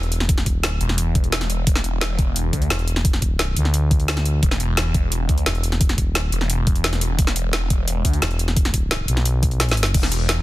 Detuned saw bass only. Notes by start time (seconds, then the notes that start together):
0.81 E1
1.67 E1
2.53 D2
4.43 E1
5.29 D2
6.32 E1
7.19 E1
8.05 D2
9.94 E1